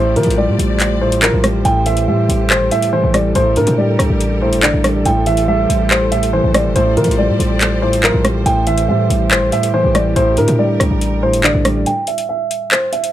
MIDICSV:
0, 0, Header, 1, 6, 480
1, 0, Start_track
1, 0, Tempo, 425532
1, 1863, Time_signature, 4, 2, 24, 8
1, 14804, End_track
2, 0, Start_track
2, 0, Title_t, "Upright piano"
2, 0, Program_c, 0, 0
2, 0, Note_on_c, 0, 72, 93
2, 138, Note_off_c, 0, 72, 0
2, 184, Note_on_c, 0, 70, 83
2, 376, Note_off_c, 0, 70, 0
2, 424, Note_on_c, 0, 74, 86
2, 1100, Note_off_c, 0, 74, 0
2, 1144, Note_on_c, 0, 72, 76
2, 1336, Note_off_c, 0, 72, 0
2, 1382, Note_on_c, 0, 70, 79
2, 1575, Note_off_c, 0, 70, 0
2, 1861, Note_on_c, 0, 79, 101
2, 2055, Note_off_c, 0, 79, 0
2, 2101, Note_on_c, 0, 76, 84
2, 2294, Note_off_c, 0, 76, 0
2, 2347, Note_on_c, 0, 76, 77
2, 2796, Note_off_c, 0, 76, 0
2, 2826, Note_on_c, 0, 72, 92
2, 3017, Note_off_c, 0, 72, 0
2, 3064, Note_on_c, 0, 76, 83
2, 3256, Note_off_c, 0, 76, 0
2, 3302, Note_on_c, 0, 72, 91
2, 3495, Note_off_c, 0, 72, 0
2, 3547, Note_on_c, 0, 74, 81
2, 3738, Note_off_c, 0, 74, 0
2, 3785, Note_on_c, 0, 72, 101
2, 3977, Note_off_c, 0, 72, 0
2, 4026, Note_on_c, 0, 70, 89
2, 4217, Note_off_c, 0, 70, 0
2, 4263, Note_on_c, 0, 74, 78
2, 4940, Note_off_c, 0, 74, 0
2, 4985, Note_on_c, 0, 72, 74
2, 5176, Note_off_c, 0, 72, 0
2, 5224, Note_on_c, 0, 74, 83
2, 5675, Note_off_c, 0, 74, 0
2, 5704, Note_on_c, 0, 79, 93
2, 5896, Note_off_c, 0, 79, 0
2, 5942, Note_on_c, 0, 76, 76
2, 6135, Note_off_c, 0, 76, 0
2, 6182, Note_on_c, 0, 76, 82
2, 6634, Note_off_c, 0, 76, 0
2, 6664, Note_on_c, 0, 72, 89
2, 6856, Note_off_c, 0, 72, 0
2, 6898, Note_on_c, 0, 76, 76
2, 7093, Note_off_c, 0, 76, 0
2, 7142, Note_on_c, 0, 72, 87
2, 7335, Note_off_c, 0, 72, 0
2, 7381, Note_on_c, 0, 74, 78
2, 7574, Note_off_c, 0, 74, 0
2, 7622, Note_on_c, 0, 72, 93
2, 7815, Note_off_c, 0, 72, 0
2, 7860, Note_on_c, 0, 70, 84
2, 8054, Note_off_c, 0, 70, 0
2, 8102, Note_on_c, 0, 74, 85
2, 8780, Note_off_c, 0, 74, 0
2, 8823, Note_on_c, 0, 72, 78
2, 9015, Note_off_c, 0, 72, 0
2, 9062, Note_on_c, 0, 70, 80
2, 9255, Note_off_c, 0, 70, 0
2, 9541, Note_on_c, 0, 79, 101
2, 9734, Note_off_c, 0, 79, 0
2, 9780, Note_on_c, 0, 76, 83
2, 9974, Note_off_c, 0, 76, 0
2, 10025, Note_on_c, 0, 76, 75
2, 10475, Note_off_c, 0, 76, 0
2, 10505, Note_on_c, 0, 72, 92
2, 10696, Note_off_c, 0, 72, 0
2, 10744, Note_on_c, 0, 76, 83
2, 10936, Note_off_c, 0, 76, 0
2, 10984, Note_on_c, 0, 72, 92
2, 11176, Note_off_c, 0, 72, 0
2, 11224, Note_on_c, 0, 74, 79
2, 11416, Note_off_c, 0, 74, 0
2, 11462, Note_on_c, 0, 72, 101
2, 11655, Note_off_c, 0, 72, 0
2, 11705, Note_on_c, 0, 70, 90
2, 11897, Note_off_c, 0, 70, 0
2, 11944, Note_on_c, 0, 74, 78
2, 12620, Note_off_c, 0, 74, 0
2, 12666, Note_on_c, 0, 72, 79
2, 12857, Note_off_c, 0, 72, 0
2, 12906, Note_on_c, 0, 74, 86
2, 13356, Note_off_c, 0, 74, 0
2, 13384, Note_on_c, 0, 79, 92
2, 13576, Note_off_c, 0, 79, 0
2, 13621, Note_on_c, 0, 76, 76
2, 13815, Note_off_c, 0, 76, 0
2, 13864, Note_on_c, 0, 76, 78
2, 14315, Note_off_c, 0, 76, 0
2, 14346, Note_on_c, 0, 72, 86
2, 14537, Note_off_c, 0, 72, 0
2, 14580, Note_on_c, 0, 76, 75
2, 14774, Note_off_c, 0, 76, 0
2, 14804, End_track
3, 0, Start_track
3, 0, Title_t, "String section"
3, 0, Program_c, 1, 48
3, 0, Note_on_c, 1, 57, 79
3, 0, Note_on_c, 1, 67, 72
3, 0, Note_on_c, 1, 72, 72
3, 0, Note_on_c, 1, 74, 86
3, 1824, Note_off_c, 1, 57, 0
3, 1825, Note_off_c, 1, 67, 0
3, 1844, Note_off_c, 1, 74, 0
3, 1862, Note_on_c, 1, 67, 74
3, 1863, Note_on_c, 1, 69, 81
3, 3745, Note_off_c, 1, 72, 0
3, 3763, Note_off_c, 1, 67, 0
3, 3781, Note_on_c, 1, 67, 72
3, 3782, Note_on_c, 1, 70, 86
3, 5683, Note_off_c, 1, 67, 0
3, 5684, Note_off_c, 1, 70, 0
3, 5703, Note_on_c, 1, 67, 72
3, 5703, Note_on_c, 1, 72, 87
3, 7604, Note_off_c, 1, 67, 0
3, 7623, Note_on_c, 1, 67, 70
3, 7623, Note_on_c, 1, 74, 86
3, 9524, Note_off_c, 1, 67, 0
3, 9524, Note_off_c, 1, 74, 0
3, 9545, Note_on_c, 1, 67, 69
3, 11418, Note_off_c, 1, 72, 0
3, 11465, Note_on_c, 1, 70, 86
3, 13338, Note_off_c, 1, 69, 0
3, 13346, Note_off_c, 1, 67, 0
3, 13365, Note_off_c, 1, 70, 0
3, 14804, End_track
4, 0, Start_track
4, 0, Title_t, "Grand piano"
4, 0, Program_c, 2, 0
4, 0, Note_on_c, 2, 45, 98
4, 156, Control_c, 2, 64, 127
4, 182, Note_on_c, 2, 53, 86
4, 425, Note_on_c, 2, 55, 90
4, 1129, Note_off_c, 2, 45, 0
4, 1146, Note_on_c, 2, 45, 78
4, 1366, Note_off_c, 2, 53, 0
4, 1383, Note_on_c, 2, 53, 79
4, 1607, Note_off_c, 2, 55, 0
4, 1624, Note_on_c, 2, 55, 87
4, 1843, Note_off_c, 2, 45, 0
4, 1860, Note_on_c, 2, 45, 89
4, 1863, Note_off_c, 2, 53, 0
4, 1864, Note_off_c, 2, 55, 0
4, 1877, Control_c, 2, 64, 0
4, 2045, Control_c, 2, 64, 127
4, 2104, Note_on_c, 2, 52, 78
4, 2344, Note_on_c, 2, 55, 85
4, 3046, Note_off_c, 2, 45, 0
4, 3063, Note_on_c, 2, 45, 73
4, 3286, Note_off_c, 2, 52, 0
4, 3303, Note_on_c, 2, 52, 86
4, 3528, Note_off_c, 2, 55, 0
4, 3545, Note_on_c, 2, 55, 86
4, 3766, Note_off_c, 2, 45, 0
4, 3783, Note_off_c, 2, 52, 0
4, 3783, Note_on_c, 2, 45, 93
4, 3784, Note_off_c, 2, 55, 0
4, 3800, Control_c, 2, 64, 0
4, 3994, Control_c, 2, 64, 127
4, 4024, Note_on_c, 2, 50, 74
4, 4265, Note_on_c, 2, 55, 90
4, 4965, Note_off_c, 2, 45, 0
4, 4982, Note_on_c, 2, 45, 80
4, 5203, Note_off_c, 2, 50, 0
4, 5220, Note_on_c, 2, 50, 87
4, 5444, Note_off_c, 2, 55, 0
4, 5461, Note_on_c, 2, 55, 81
4, 5687, Note_off_c, 2, 45, 0
4, 5702, Note_off_c, 2, 50, 0
4, 5702, Note_off_c, 2, 55, 0
4, 5704, Note_on_c, 2, 45, 92
4, 5720, Control_c, 2, 64, 0
4, 5903, Control_c, 2, 64, 127
4, 5941, Note_on_c, 2, 52, 76
4, 6181, Note_on_c, 2, 55, 91
4, 6888, Note_off_c, 2, 45, 0
4, 6905, Note_on_c, 2, 45, 76
4, 7126, Note_off_c, 2, 52, 0
4, 7143, Note_on_c, 2, 52, 89
4, 7364, Note_off_c, 2, 55, 0
4, 7381, Note_on_c, 2, 55, 84
4, 7604, Note_off_c, 2, 45, 0
4, 7621, Note_on_c, 2, 45, 98
4, 7622, Note_off_c, 2, 55, 0
4, 7623, Note_off_c, 2, 52, 0
4, 7636, Control_c, 2, 64, 0
4, 7860, Note_on_c, 2, 53, 85
4, 7869, Control_c, 2, 64, 127
4, 8105, Note_on_c, 2, 55, 87
4, 8807, Note_off_c, 2, 45, 0
4, 8823, Note_on_c, 2, 45, 77
4, 9045, Note_off_c, 2, 53, 0
4, 9062, Note_on_c, 2, 53, 81
4, 9287, Note_off_c, 2, 55, 0
4, 9304, Note_on_c, 2, 55, 92
4, 9523, Note_off_c, 2, 45, 0
4, 9540, Note_on_c, 2, 45, 90
4, 9542, Note_off_c, 2, 53, 0
4, 9543, Note_off_c, 2, 55, 0
4, 9556, Control_c, 2, 64, 0
4, 9731, Control_c, 2, 64, 127
4, 9781, Note_on_c, 2, 52, 84
4, 10022, Note_on_c, 2, 55, 88
4, 10725, Note_off_c, 2, 45, 0
4, 10742, Note_on_c, 2, 45, 77
4, 10964, Note_off_c, 2, 52, 0
4, 10981, Note_on_c, 2, 52, 87
4, 11205, Note_off_c, 2, 55, 0
4, 11222, Note_on_c, 2, 55, 83
4, 11444, Note_off_c, 2, 45, 0
4, 11461, Note_on_c, 2, 45, 94
4, 11462, Note_off_c, 2, 52, 0
4, 11462, Note_off_c, 2, 55, 0
4, 11477, Control_c, 2, 64, 0
4, 11649, Control_c, 2, 64, 127
4, 11703, Note_on_c, 2, 50, 77
4, 11944, Note_on_c, 2, 55, 88
4, 12647, Note_off_c, 2, 45, 0
4, 12663, Note_on_c, 2, 45, 80
4, 12884, Note_off_c, 2, 50, 0
4, 12901, Note_on_c, 2, 50, 88
4, 13125, Note_off_c, 2, 55, 0
4, 13142, Note_on_c, 2, 55, 80
4, 13382, Note_off_c, 2, 50, 0
4, 13382, Note_off_c, 2, 55, 0
4, 13383, Note_off_c, 2, 45, 0
4, 13398, Control_c, 2, 64, 0
4, 13621, Control_c, 2, 64, 127
4, 14804, End_track
5, 0, Start_track
5, 0, Title_t, "808-style bass"
5, 0, Program_c, 3, 38
5, 0, Note_on_c, 3, 33, 110
5, 184, Note_on_c, 3, 52, 97
5, 201, Note_off_c, 3, 33, 0
5, 298, Note_off_c, 3, 52, 0
5, 304, Note_on_c, 3, 33, 107
5, 544, Note_on_c, 3, 45, 100
5, 561, Note_off_c, 3, 33, 0
5, 657, Note_off_c, 3, 45, 0
5, 663, Note_on_c, 3, 33, 105
5, 1469, Note_off_c, 3, 33, 0
5, 1503, Note_on_c, 3, 33, 103
5, 1849, Note_off_c, 3, 33, 0
5, 1863, Note_on_c, 3, 33, 111
5, 2343, Note_on_c, 3, 45, 98
5, 2360, Note_off_c, 3, 33, 0
5, 2571, Note_off_c, 3, 45, 0
5, 2582, Note_on_c, 3, 33, 109
5, 2823, Note_on_c, 3, 31, 102
5, 2840, Note_off_c, 3, 33, 0
5, 2943, Note_on_c, 3, 33, 104
5, 2960, Note_off_c, 3, 31, 0
5, 3057, Note_off_c, 3, 33, 0
5, 3424, Note_on_c, 3, 33, 104
5, 3769, Note_off_c, 3, 33, 0
5, 3783, Note_on_c, 3, 33, 114
5, 4023, Note_on_c, 3, 45, 102
5, 4040, Note_off_c, 3, 33, 0
5, 4137, Note_off_c, 3, 45, 0
5, 4142, Note_on_c, 3, 45, 102
5, 4488, Note_off_c, 3, 45, 0
5, 4502, Note_on_c, 3, 36, 104
5, 4615, Note_off_c, 3, 36, 0
5, 4622, Note_on_c, 3, 33, 105
5, 5103, Note_on_c, 3, 31, 100
5, 5120, Note_off_c, 3, 33, 0
5, 5222, Note_on_c, 3, 33, 106
5, 5239, Note_off_c, 3, 31, 0
5, 5337, Note_off_c, 3, 33, 0
5, 5343, Note_on_c, 3, 33, 100
5, 5688, Note_off_c, 3, 33, 0
5, 5703, Note_on_c, 3, 33, 115
5, 6394, Note_off_c, 3, 33, 0
5, 6422, Note_on_c, 3, 33, 107
5, 7229, Note_off_c, 3, 33, 0
5, 7263, Note_on_c, 3, 33, 106
5, 7502, Note_on_c, 3, 31, 103
5, 7519, Note_off_c, 3, 33, 0
5, 7616, Note_off_c, 3, 31, 0
5, 7623, Note_on_c, 3, 33, 112
5, 7863, Note_on_c, 3, 52, 100
5, 7880, Note_off_c, 3, 33, 0
5, 7977, Note_off_c, 3, 52, 0
5, 7983, Note_on_c, 3, 33, 105
5, 8223, Note_on_c, 3, 45, 101
5, 8240, Note_off_c, 3, 33, 0
5, 8337, Note_off_c, 3, 45, 0
5, 8343, Note_on_c, 3, 33, 108
5, 9150, Note_off_c, 3, 33, 0
5, 9183, Note_on_c, 3, 33, 104
5, 9529, Note_off_c, 3, 33, 0
5, 9543, Note_on_c, 3, 33, 110
5, 10024, Note_on_c, 3, 45, 99
5, 10041, Note_off_c, 3, 33, 0
5, 10251, Note_off_c, 3, 45, 0
5, 10264, Note_on_c, 3, 33, 112
5, 10504, Note_on_c, 3, 31, 102
5, 10521, Note_off_c, 3, 33, 0
5, 10624, Note_on_c, 3, 33, 100
5, 10640, Note_off_c, 3, 31, 0
5, 10737, Note_off_c, 3, 33, 0
5, 11104, Note_on_c, 3, 33, 101
5, 11449, Note_off_c, 3, 33, 0
5, 11464, Note_on_c, 3, 33, 107
5, 11704, Note_on_c, 3, 45, 100
5, 11720, Note_off_c, 3, 33, 0
5, 11817, Note_off_c, 3, 45, 0
5, 11823, Note_on_c, 3, 45, 104
5, 12169, Note_off_c, 3, 45, 0
5, 12183, Note_on_c, 3, 36, 101
5, 12298, Note_off_c, 3, 36, 0
5, 12303, Note_on_c, 3, 33, 106
5, 12783, Note_on_c, 3, 31, 98
5, 12800, Note_off_c, 3, 33, 0
5, 12903, Note_on_c, 3, 33, 105
5, 12920, Note_off_c, 3, 31, 0
5, 13017, Note_off_c, 3, 33, 0
5, 13023, Note_on_c, 3, 33, 102
5, 13369, Note_off_c, 3, 33, 0
5, 14804, End_track
6, 0, Start_track
6, 0, Title_t, "Drums"
6, 183, Note_on_c, 9, 42, 46
6, 264, Note_off_c, 9, 42, 0
6, 264, Note_on_c, 9, 42, 62
6, 344, Note_off_c, 9, 42, 0
6, 344, Note_on_c, 9, 42, 74
6, 457, Note_off_c, 9, 42, 0
6, 670, Note_on_c, 9, 42, 83
6, 783, Note_off_c, 9, 42, 0
6, 903, Note_on_c, 9, 39, 71
6, 904, Note_on_c, 9, 42, 76
6, 1016, Note_off_c, 9, 39, 0
6, 1017, Note_off_c, 9, 42, 0
6, 1265, Note_on_c, 9, 42, 76
6, 1378, Note_off_c, 9, 42, 0
6, 1382, Note_on_c, 9, 39, 124
6, 1495, Note_off_c, 9, 39, 0
6, 1622, Note_on_c, 9, 37, 100
6, 1622, Note_on_c, 9, 42, 86
6, 1735, Note_off_c, 9, 37, 0
6, 1735, Note_off_c, 9, 42, 0
6, 1862, Note_on_c, 9, 42, 71
6, 1974, Note_off_c, 9, 42, 0
6, 2097, Note_on_c, 9, 42, 74
6, 2209, Note_off_c, 9, 42, 0
6, 2219, Note_on_c, 9, 42, 76
6, 2332, Note_off_c, 9, 42, 0
6, 2590, Note_on_c, 9, 42, 85
6, 2703, Note_off_c, 9, 42, 0
6, 2823, Note_on_c, 9, 39, 124
6, 2936, Note_off_c, 9, 39, 0
6, 3062, Note_on_c, 9, 42, 74
6, 3175, Note_off_c, 9, 42, 0
6, 3186, Note_on_c, 9, 42, 82
6, 3299, Note_off_c, 9, 42, 0
6, 3542, Note_on_c, 9, 42, 84
6, 3543, Note_on_c, 9, 37, 98
6, 3655, Note_off_c, 9, 42, 0
6, 3656, Note_off_c, 9, 37, 0
6, 3782, Note_on_c, 9, 42, 72
6, 3894, Note_off_c, 9, 42, 0
6, 4016, Note_on_c, 9, 42, 75
6, 4129, Note_off_c, 9, 42, 0
6, 4138, Note_on_c, 9, 42, 75
6, 4251, Note_off_c, 9, 42, 0
6, 4501, Note_on_c, 9, 37, 88
6, 4509, Note_on_c, 9, 42, 82
6, 4614, Note_off_c, 9, 37, 0
6, 4621, Note_off_c, 9, 42, 0
6, 4744, Note_on_c, 9, 42, 75
6, 4856, Note_off_c, 9, 42, 0
6, 5106, Note_on_c, 9, 42, 75
6, 5219, Note_off_c, 9, 42, 0
6, 5222, Note_on_c, 9, 39, 121
6, 5334, Note_off_c, 9, 39, 0
6, 5462, Note_on_c, 9, 42, 85
6, 5463, Note_on_c, 9, 37, 101
6, 5575, Note_off_c, 9, 37, 0
6, 5575, Note_off_c, 9, 42, 0
6, 5702, Note_on_c, 9, 42, 70
6, 5815, Note_off_c, 9, 42, 0
6, 5936, Note_on_c, 9, 42, 72
6, 6049, Note_off_c, 9, 42, 0
6, 6058, Note_on_c, 9, 42, 76
6, 6171, Note_off_c, 9, 42, 0
6, 6429, Note_on_c, 9, 42, 85
6, 6542, Note_off_c, 9, 42, 0
6, 6662, Note_on_c, 9, 39, 118
6, 6775, Note_off_c, 9, 39, 0
6, 6902, Note_on_c, 9, 42, 76
6, 7014, Note_off_c, 9, 42, 0
6, 7026, Note_on_c, 9, 42, 85
6, 7139, Note_off_c, 9, 42, 0
6, 7382, Note_on_c, 9, 42, 85
6, 7383, Note_on_c, 9, 37, 102
6, 7495, Note_off_c, 9, 42, 0
6, 7496, Note_off_c, 9, 37, 0
6, 7622, Note_on_c, 9, 42, 68
6, 7735, Note_off_c, 9, 42, 0
6, 7862, Note_on_c, 9, 42, 47
6, 7943, Note_off_c, 9, 42, 0
6, 7943, Note_on_c, 9, 42, 61
6, 8023, Note_off_c, 9, 42, 0
6, 8023, Note_on_c, 9, 42, 73
6, 8136, Note_off_c, 9, 42, 0
6, 8348, Note_on_c, 9, 42, 80
6, 8461, Note_off_c, 9, 42, 0
6, 8583, Note_on_c, 9, 39, 73
6, 8584, Note_on_c, 9, 42, 76
6, 8696, Note_off_c, 9, 39, 0
6, 8697, Note_off_c, 9, 42, 0
6, 8946, Note_on_c, 9, 42, 77
6, 9059, Note_off_c, 9, 42, 0
6, 9062, Note_on_c, 9, 39, 123
6, 9175, Note_off_c, 9, 39, 0
6, 9302, Note_on_c, 9, 37, 96
6, 9302, Note_on_c, 9, 42, 88
6, 9415, Note_off_c, 9, 37, 0
6, 9415, Note_off_c, 9, 42, 0
6, 9542, Note_on_c, 9, 42, 70
6, 9655, Note_off_c, 9, 42, 0
6, 9776, Note_on_c, 9, 42, 75
6, 9889, Note_off_c, 9, 42, 0
6, 9899, Note_on_c, 9, 42, 80
6, 10012, Note_off_c, 9, 42, 0
6, 10270, Note_on_c, 9, 42, 79
6, 10382, Note_off_c, 9, 42, 0
6, 10504, Note_on_c, 9, 39, 119
6, 10616, Note_off_c, 9, 39, 0
6, 10742, Note_on_c, 9, 42, 72
6, 10855, Note_off_c, 9, 42, 0
6, 10866, Note_on_c, 9, 42, 82
6, 10979, Note_off_c, 9, 42, 0
6, 11223, Note_on_c, 9, 37, 99
6, 11223, Note_on_c, 9, 42, 85
6, 11335, Note_off_c, 9, 42, 0
6, 11336, Note_off_c, 9, 37, 0
6, 11463, Note_on_c, 9, 42, 72
6, 11576, Note_off_c, 9, 42, 0
6, 11696, Note_on_c, 9, 42, 73
6, 11809, Note_off_c, 9, 42, 0
6, 11819, Note_on_c, 9, 42, 77
6, 11932, Note_off_c, 9, 42, 0
6, 12182, Note_on_c, 9, 37, 90
6, 12190, Note_on_c, 9, 42, 82
6, 12295, Note_off_c, 9, 37, 0
6, 12302, Note_off_c, 9, 42, 0
6, 12424, Note_on_c, 9, 42, 78
6, 12537, Note_off_c, 9, 42, 0
6, 12786, Note_on_c, 9, 42, 76
6, 12898, Note_off_c, 9, 42, 0
6, 12902, Note_on_c, 9, 39, 125
6, 13015, Note_off_c, 9, 39, 0
6, 13142, Note_on_c, 9, 37, 101
6, 13142, Note_on_c, 9, 42, 86
6, 13255, Note_off_c, 9, 37, 0
6, 13255, Note_off_c, 9, 42, 0
6, 13381, Note_on_c, 9, 42, 69
6, 13494, Note_off_c, 9, 42, 0
6, 13616, Note_on_c, 9, 42, 74
6, 13729, Note_off_c, 9, 42, 0
6, 13738, Note_on_c, 9, 42, 76
6, 13851, Note_off_c, 9, 42, 0
6, 14110, Note_on_c, 9, 42, 80
6, 14222, Note_off_c, 9, 42, 0
6, 14342, Note_on_c, 9, 39, 115
6, 14455, Note_off_c, 9, 39, 0
6, 14581, Note_on_c, 9, 42, 73
6, 14693, Note_off_c, 9, 42, 0
6, 14706, Note_on_c, 9, 42, 82
6, 14804, Note_off_c, 9, 42, 0
6, 14804, End_track
0, 0, End_of_file